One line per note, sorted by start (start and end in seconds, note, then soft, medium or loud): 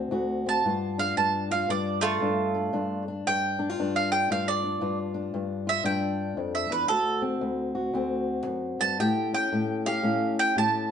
0.00 0.45 C4 medium
0.00 0.11 F#4 medium
0.11 0.64 D2 medium
0.11 0.62 F#4 medium
0.46 0.62 C4 medium
0.46 0.97 A5 medium
0.65 1.17 G2 medium
0.65 1.50 F4 medium
0.98 1.69 D4 medium
0.98 1.17 F5 medium
1.17 1.69 G2 medium
1.17 1.49 A5 medium
1.51 2.76 F4 medium
1.51 1.69 F5 medium
1.69 2.21 G2 medium
1.69 2.22 D4 medium
1.69 2.01 D5 medium
2.01 3.02 A3 medium
2.01 3.03 F4 medium
2.21 2.72 G2 medium
2.21 2.54 D4 medium
2.55 2.73 D4 medium
2.73 3.26 G2 medium
2.73 3.08 D4 medium
3.08 3.59 D4 medium
3.27 3.79 G2 medium
3.27 3.93 G5 loud
3.59 3.70 D4 medium
3.70 4.29 F4 medium
3.79 4.29 G2 medium
3.79 4.63 D4 medium
3.96 4.11 F5 medium
4.12 4.28 G5 medium
4.30 4.79 G2 medium
4.30 4.80 F4 medium
4.30 4.47 F5 medium
4.48 4.98 D5 medium
4.64 5.14 D4 medium
4.81 5.33 G2 medium
4.81 5.66 F4 medium
5.14 5.84 D4 medium
5.34 5.83 G2 medium
5.67 6.87 F4 medium
5.67 5.85 E5 medium
5.84 6.36 G2 medium
5.84 6.87 D4 medium
5.84 6.53 G5 medium
6.37 6.69 F2 medium
6.55 6.71 E5 medium
6.70 6.88 E2 medium
6.70 6.88 B4 medium
6.88 7.40 D2 medium
6.88 7.74 F#4 medium
6.88 7.21 A4 loud
7.22 7.93 C4 medium
7.41 7.92 D2 medium
7.75 8.96 F#4 medium
7.93 8.46 D2 medium
7.93 8.96 C4 medium
8.46 8.79 F#2 medium
8.79 8.98 G2 medium
8.79 8.98 A5 medium
9.00 9.51 A2 medium
9.00 9.86 G4 medium
9.00 9.31 G5 medium
9.34 10.03 C#4 medium
9.34 9.83 G5 medium
9.53 10.02 A2 medium
9.86 10.56 G4 medium
9.86 10.35 F5 medium
10.03 10.55 A2 medium
10.03 10.88 C#4 medium
10.39 10.56 G5 medium
10.56 10.91 A2 medium
10.56 10.91 G4 medium
10.56 10.91 A5 medium